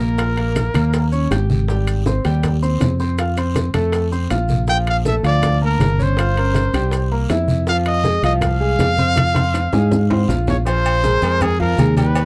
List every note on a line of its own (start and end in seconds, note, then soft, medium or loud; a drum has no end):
0.00 0.69 A#1 loud
0.00 0.15 A#3 medium
0.00 0.15 A#4 medium
0.00 1.11 A#4 medium
0.00 0.15 A#5 medium
0.00 high bongo soft
0.18 0.34 F4 medium
0.18 0.34 F5 medium
0.18 0.34 F6 medium
0.18 high bongo medium
0.18 high conga soft
0.18 high timbale medium
0.18 long guiro medium
0.18 maracas medium
0.37 0.68 A#3 medium
0.37 0.68 A#4 medium
0.37 0.68 A#5 medium
0.37 high bongo soft
0.37 high conga soft
0.37 high timbale medium
0.56 high bongo medium
0.56 high conga medium
0.56 high timbale medium
0.56 low timbale medium
0.56 short guiro medium
0.56 maracas medium
0.74 1.27 D#2 medium
0.74 1.05 A#3 medium
0.74 1.05 A#4 medium
0.74 1.06 A#5 medium
0.74 high bongo soft
0.74 high conga medium
0.74 high timbale medium
0.74 short guiro medium
0.74 maracas soft
0.93 high bongo medium
0.93 high timbale medium
0.93 long guiro medium
0.93 maracas medium
1.12 1.27 C#4 medium
1.12 1.27 C#5 medium
1.12 1.28 C#6 medium
1.12 high conga soft
1.12 maracas medium
1.31 2.19 G#1 loud
1.31 1.62 G4 medium
1.31 1.62 G5 medium
1.31 1.62 G6 medium
1.31 high bongo soft
1.31 low bongo medium
1.31 high conga soft
1.31 high timbale medium
1.31 low timbale medium
1.31 short guiro medium
1.31 maracas medium
1.50 high bongo soft
1.50 high conga medium
1.50 short guiro medium
1.50 maracas soft
1.68 1.99 G3 medium
1.68 1.99 G4 medium
1.68 2.00 G5 medium
1.68 high bongo medium
1.68 long guiro medium
1.68 maracas medium
1.87 high bongo soft
1.87 high conga soft
1.87 high timbale medium
1.87 maracas medium
2.06 2.21 C4 medium
2.06 2.22 C5 medium
2.06 2.22 C6 medium
2.06 high bongo medium
2.06 high conga medium
2.06 low timbale medium
2.06 short guiro medium
2.06 maracas medium
2.25 2.77 D#2 medium
2.25 2.55 G3 medium
2.25 2.55 G4 medium
2.25 2.55 G5 medium
2.25 high bongo soft
2.25 high timbale medium
2.25 short guiro medium
2.25 maracas soft
2.43 high bongo medium
2.43 high conga soft
2.43 low conga medium
2.43 high timbale medium
2.43 long guiro medium
2.43 maracas medium
2.62 2.93 C4 medium
2.62 2.93 C5 medium
2.62 2.93 C6 medium
2.62 maracas medium
2.80 3.69 F2 medium
2.80 high bongo soft
2.80 low bongo medium
2.80 high conga medium
2.80 high timbale medium
2.80 low timbale medium
2.80 short guiro medium
2.80 maracas medium
3.00 3.15 C4 medium
3.00 3.15 C5 medium
3.00 3.15 C6 medium
3.00 high bongo soft
3.00 short guiro medium
3.00 maracas soft
3.18 3.34 F4 medium
3.18 3.34 F5 medium
3.18 3.34 F6 medium
3.18 high bongo medium
3.18 high conga soft
3.18 high timbale medium
3.18 long guiro medium
3.18 maracas medium
3.37 3.68 C4 medium
3.37 3.68 C5 medium
3.37 3.69 C6 medium
3.37 high bongo soft
3.37 high conga soft
3.37 high timbale medium
3.37 maracas medium
3.55 high bongo medium
3.55 high conga medium
3.55 high timbale medium
3.55 low timbale medium
3.55 short guiro medium
3.55 maracas medium
3.74 4.27 F2 medium
3.74 4.05 A3 medium
3.74 4.05 A4 medium
3.74 4.05 A5 medium
3.74 high bongo soft
3.74 high conga medium
3.74 high timbale medium
3.74 short guiro medium
3.74 maracas soft
3.92 high bongo medium
3.92 high conga soft
3.92 high timbale medium
3.92 long guiro medium
3.92 maracas medium
4.12 4.27 C4 medium
4.12 4.27 C5 medium
4.12 4.27 C6 medium
4.12 high conga soft
4.12 maracas medium
4.30 5.18 A#1 medium
4.30 4.61 F4 medium
4.30 4.61 F5 medium
4.30 4.61 F6 medium
4.30 high bongo soft
4.30 low bongo medium
4.30 high conga soft
4.30 high timbale medium
4.30 low timbale medium
4.30 short guiro medium
4.30 maracas medium
4.48 high bongo soft
4.48 high conga medium
4.48 short guiro medium
4.48 maracas soft
4.67 4.98 F3 medium
4.67 4.99 F4 medium
4.67 4.99 F5 medium
4.67 4.78 G5 loud
4.67 high bongo medium
4.67 high conga soft
4.67 long guiro medium
4.67 maracas medium
4.87 4.97 F5 loud
4.87 high bongo soft
4.87 high conga soft
4.87 high timbale medium
5.05 5.21 A3 medium
5.05 5.21 A4 medium
5.05 5.16 E5 medium
5.05 5.21 A5 medium
5.05 high bongo medium
5.05 high conga medium
5.05 low timbale medium
5.05 short guiro medium
5.05 maracas medium
5.23 5.76 D2 medium
5.23 5.55 F3 medium
5.23 5.55 F4 medium
5.23 5.60 D5 medium
5.23 5.55 F5 medium
5.23 high bongo soft
5.23 high conga soft
5.23 high timbale medium
5.23 short guiro medium
5.23 maracas soft
5.42 high bongo medium
5.42 high conga soft
5.42 low conga medium
5.42 high timbale medium
5.42 long guiro medium
5.42 maracas medium
5.61 5.92 A#3 medium
5.61 5.92 A#4 medium
5.61 6.04 A#4 medium
5.61 5.92 A5 medium
5.61 high conga soft
5.79 6.68 G1 loud
5.79 high bongo soft
5.79 low bongo medium
5.79 high conga medium
5.79 high timbale medium
5.79 low timbale medium
5.79 short guiro medium
5.79 maracas medium
5.99 6.14 C#4 medium
5.99 6.14 C#5 medium
5.99 6.15 C#6 medium
5.99 high bongo soft
5.99 high conga medium
5.99 short guiro medium
5.99 maracas soft
6.03 7.13 C5 medium
6.17 6.33 F4 medium
6.17 6.34 F5 medium
6.17 6.34 F6 medium
6.17 high bongo medium
6.17 high timbale loud
6.17 long guiro medium
6.17 maracas medium
6.35 6.67 C#4 medium
6.35 6.68 A#4 medium
6.35 high bongo soft
6.35 high conga soft
6.35 high timbale medium
6.54 high bongo medium
6.54 high conga medium
6.54 high timbale medium
6.54 low timbale medium
6.54 short guiro medium
6.54 maracas medium
6.73 7.26 C2 medium
6.73 7.05 G3 medium
6.73 7.05 G4 medium
6.73 7.05 G5 medium
6.73 high bongo soft
6.73 high conga medium
6.73 high timbale medium
6.73 short guiro medium
6.73 maracas soft
6.91 high bongo medium
6.91 high conga soft
6.91 high timbale medium
6.91 long guiro medium
6.91 maracas medium
7.11 7.27 A#3 medium
7.11 7.27 A#4 medium
7.11 7.27 A#5 medium
7.11 high conga soft
7.30 8.18 F2 loud
7.30 7.61 E4 medium
7.30 7.61 E5 medium
7.30 7.61 E6 medium
7.30 high bongo soft
7.30 low bongo medium
7.30 high conga soft
7.30 high timbale medium
7.30 low timbale medium
7.30 short guiro medium
7.30 maracas medium
7.48 high bongo soft
7.48 high conga medium
7.48 short guiro medium
7.48 maracas soft
7.67 7.99 F3 medium
7.67 7.99 F4 medium
7.67 7.99 F5 medium
7.67 7.77 F5 loud
7.67 high bongo medium
7.67 long guiro medium
7.67 maracas medium
7.86 8.22 D#5 loud
7.86 high bongo soft
7.86 high conga soft
7.86 high timbale medium
8.04 8.20 G#3 medium
8.04 8.20 G#4 medium
8.04 8.21 G#5 medium
8.04 high bongo medium
8.04 high conga medium
8.04 low timbale medium
8.04 short guiro medium
8.04 maracas medium
8.23 8.75 C2 medium
8.23 8.54 F3 medium
8.23 8.54 F4 medium
8.23 8.33 D#5 medium
8.23 8.55 F5 medium
8.23 high bongo soft
8.23 high conga soft
8.23 high timbale medium
8.23 short guiro medium
8.23 maracas soft
8.41 10.26 F5 loud
8.41 high bongo medium
8.41 high conga soft
8.41 low conga medium
8.41 high timbale medium
8.41 long guiro medium
8.41 maracas medium
8.60 8.91 G#3 medium
8.60 8.91 G#4 medium
8.60 8.92 G#5 medium
8.60 high conga soft
8.79 9.67 F2 medium
8.79 high bongo soft
8.79 low bongo medium
8.79 high conga medium
8.79 high timbale medium
8.79 low timbale medium
8.79 short guiro medium
8.79 maracas medium
8.97 9.14 C4 medium
8.97 9.14 C5 medium
8.97 9.14 C6 medium
8.97 high bongo soft
8.97 high conga medium
8.97 short guiro medium
8.97 maracas soft
9.16 9.32 F4 medium
9.16 9.32 F5 medium
9.16 9.32 F6 medium
9.16 high bongo medium
9.16 high conga loud
9.16 high timbale medium
9.16 long guiro medium
9.16 maracas medium
9.34 9.66 C4 medium
9.34 9.66 C5 medium
9.34 9.66 C6 medium
9.34 high bongo medium
9.34 high conga medium
9.34 high timbale medium
9.34 maracas medium
9.54 low bongo medium
9.54 high timbale medium
9.54 low timbale medium
9.54 short guiro medium
9.54 maracas medium
9.73 10.25 G#2 loud
9.73 10.04 G#3 medium
9.73 10.04 G#4 medium
9.73 10.04 G#5 medium
9.73 low bongo medium
9.73 low conga medium
9.73 high timbale medium
9.73 short guiro medium
9.73 maracas soft
9.91 low bongo medium
9.91 low conga medium
9.91 long guiro medium
9.91 maracas medium
10.10 10.26 C4 medium
10.10 10.26 C5 medium
10.10 10.26 C6 medium
10.10 low bongo medium
10.10 low conga medium
10.10 high timbale medium
10.28 11.17 A#1 loud
10.28 10.59 F4 medium
10.28 10.59 F5 medium
10.28 10.60 F6 medium
10.28 low bongo medium
10.28 low conga medium
10.28 low timbale medium
10.28 short guiro medium
10.28 maracas medium
10.47 10.57 C#5 medium
10.47 low bongo medium
10.47 low conga medium
10.47 low timbale medium
10.47 short guiro medium
10.47 maracas soft
10.66 10.97 F3 medium
10.66 10.97 F4 medium
10.66 11.44 C5 loud
10.66 10.97 F5 medium
10.66 cowbell loud
10.66 high conga soft
10.66 low agogo medium
10.66 long guiro medium
10.66 maracas medium
10.85 high conga soft
10.85 low agogo loud
10.85 maracas medium
11.03 11.19 G#3 medium
11.03 11.19 G#4 medium
11.03 11.19 A#4 medium
11.03 cowbell medium
11.03 high conga medium
11.03 short guiro medium
11.03 maracas medium
11.22 11.75 F2 loud
11.22 11.53 G#3 medium
11.22 11.53 G#4 medium
11.22 11.54 A#4 medium
11.22 cowbell medium
11.22 high conga soft
11.22 low agogo medium
11.22 short guiro medium
11.22 maracas soft
11.41 11.60 G#4 loud
11.41 cowbell loud
11.41 high conga soft
11.41 low conga medium
11.41 low agogo medium
11.41 long guiro medium
11.41 maracas medium
11.60 11.75 F3 medium
11.60 11.75 F4 medium
11.60 11.95 A#4 medium
11.60 11.75 F5 medium
11.60 high conga soft
11.60 low conga medium
11.78 12.25 D#2 loud
11.78 11.93 G#3 medium
11.78 11.94 G#4 medium
11.78 11.94 A#4 medium
11.78 cowbell medium
11.78 high conga medium
11.78 low agogo medium
11.78 short guiro medium
11.78 maracas medium
11.97 12.25 G3 medium
11.97 12.25 G4 medium
11.97 12.25 B4 medium
11.97 12.25 G5 medium
11.97 cowbell medium
11.97 high conga medium
11.97 low agogo medium
11.97 short guiro medium
11.97 maracas soft
12.15 cowbell loud
12.15 high conga soft
12.15 low agogo loud
12.15 long guiro medium
12.15 maracas medium